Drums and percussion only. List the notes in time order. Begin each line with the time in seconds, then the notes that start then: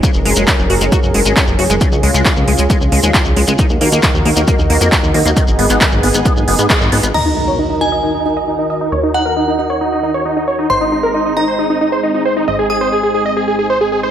0.03 kick, closed hi-hat, shekere
0.14 shekere
0.26 open hi-hat
0.36 closed hi-hat, shekere
0.47 kick, clap, closed hi-hat, shekere
0.59 shekere
0.70 open hi-hat
0.81 closed hi-hat, shekere
0.92 kick, closed hi-hat, shekere
1.03 shekere
1.14 open hi-hat
1.25 closed hi-hat, shekere
1.37 kick, clap, closed hi-hat, shekere
1.47 shekere
1.59 open hi-hat
1.70 closed hi-hat, shekere
1.81 kick, closed hi-hat, shekere
1.92 shekere
2.03 open hi-hat
2.14 closed hi-hat, shekere
2.25 kick, clap, closed hi-hat, shekere
2.36 shekere
2.48 open hi-hat
2.58 closed hi-hat, shekere
2.70 kick, closed hi-hat, shekere
2.81 shekere
2.92 open hi-hat
3.03 closed hi-hat, shekere
3.14 kick, clap, closed hi-hat, shekere
3.25 shekere
3.37 open hi-hat
3.48 closed hi-hat, shekere
3.59 kick, closed hi-hat, shekere
3.70 shekere
3.81 open hi-hat
3.92 closed hi-hat, shekere
4.02 kick, clap, closed hi-hat, shekere
4.14 shekere
4.25 open hi-hat
4.36 closed hi-hat, shekere
4.48 kick, closed hi-hat, shekere
4.59 shekere
4.70 open hi-hat
4.81 closed hi-hat, shekere
4.92 kick, clap, closed hi-hat, shekere
5.04 shekere
5.14 open hi-hat
5.25 closed hi-hat, shekere
5.37 kick, closed hi-hat, shekere
5.48 shekere
5.59 open hi-hat
5.70 clap, closed hi-hat, shekere
5.81 kick, clap, closed hi-hat, shekere
5.92 shekere
6.03 open hi-hat
6.14 closed hi-hat, shekere
6.25 kick, closed hi-hat, shekere
6.37 shekere
6.48 open hi-hat
6.59 closed hi-hat, shekere
6.70 kick, clap, closed hi-hat, shekere
6.81 shekere
6.92 open hi-hat
7.03 closed hi-hat, shekere
7.14 crash